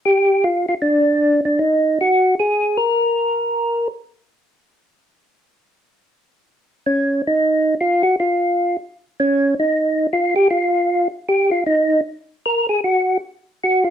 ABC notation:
X:1
M:4/4
L:1/8
Q:"Swing" 1/4=155
K:Fm
V:1 name="Tonewheel organ"
G2 F F =D3 D | E2 _G2 A2 B2- | B4 z4 | z8 |
z3 D2 E3 | F _G F3 z2 D- | D E3 F G F2- | F z G F E2 z2 |
B A _G2 z2 G F |]